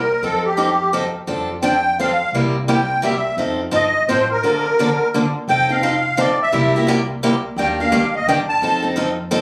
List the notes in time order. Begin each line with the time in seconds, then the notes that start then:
Already playing: A#4
0.22 F2 F3 C4 D#4 A4
0.45 G4
0.57 F3 C4 D#4 A4
0.93 F3 C4 D#4 A4
1.27 F2 F3 C4 D4 A4
1.63 F3 C4 D4 A4 G5
1.99 F3 C4 D4 A4 F5
2.32 C2 C3 G3 A#3 E4 G4
2.68 C3 G3 A#3 E4 G4 G5
3.02 C3 G3 A#3 E4 G4 E5
3.37 F2 F3 C4 D#4 A4
3.71 G1 F3 C4 D#4 A4 D#5
4.08 A1 F3 C4 D#4 A4 C5
4.30 A#4
4.43 D3 F3 A#3 D4 A4
4.79 D3 F3 A#3 D4 A4
5.14 D3 F3 A#3 D4 A4
5.48 F1 F3 C4 D#4 A4 G5
5.69 C4 D#4 A4 F5
5.83 F3 C4 D#4 A4
6.17 F3 C4 D#4 A4 D5
6.42 E5
6.52 C2 C3 G3 A#3 E4 G4
6.76 A#3 E4 G4
6.87 C3 G3 A#3 E4 G4
7.23 C3 G3 A#3 E4 G4
7.56 D#2 D#3 G3 A#3 D4 G4 G5
7.80 A#3 D4 G4 F5
7.92 D2 D#3 G3 A#3 D4 G4
8.15 D#5
8.27 D#2 D#3 G3 A#3 D4 G4 G5
8.48 A5
8.61 F2 F3 C4 D#4 A4
8.82 C4 D#4 A4
8.96 F3 C4 D#4 A4
9.31 F3 C4 D#4 A4